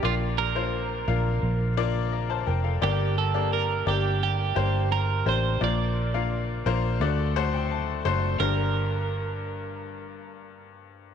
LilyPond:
<<
  \new Staff \with { instrumentName = "Clean electric guitar" } { \time 4/4 \key g \minor \tempo 4 = 86 f'8 bes'2 r4. | g'8 a'8 bes'8 g'8 g'4 bes'8 c''8 | d''2 r2 | bes'1 | }
  \new Staff \with { instrumentName = "Upright piano" } { \time 4/4 \key g \minor << { r2. <d'' bes''>16 <c'' a''>16 <bes' g''>16 <a' f''>16~ | <a' f''>16 r2. r8. | r2 r8 fis''16 g''16 a''8 c'''8 | r1 | } \\ { <bes d' f' bes' d''>8. <bes d' f' bes' c''>8. <bes d' f' bes' f''>4 <bes d' f' bes' d''>4 r8 | <bes d' g' bes' d''>8. <bes d' g' bes' d''>8. <bes d' g' bes' d''>4 <bes d' g' bes' c''>4 <bes d' g' bes' c''>8 | <bes d' f' bes' d''>8. <bes d' f' bes' f''>8. <bes d' f' bes' c''>8 <a d' fis' a' d''>8 <a d' fis' a' c''>4 <a d' fis' a' c''>8 | <bes d' g' bes'>1 | } >> }
  \new Staff \with { instrumentName = "Upright piano" } { \clef bass \time 4/4 \key g \minor bes,4. r2 r8 | g,4. r2 r8 | bes,4. r8 d4. r8 | g,1 | }
  \new Staff \with { instrumentName = "Fingered electric bass" } { \clef bass \time 4/4 \key g \minor bes,,4. bes,,8 bes,,4. f,,8 | g,,4. g,,4 g,,4 a,,8 | bes,,4. bes,,8 d,4. fis,,8 | g,,1 | }
>>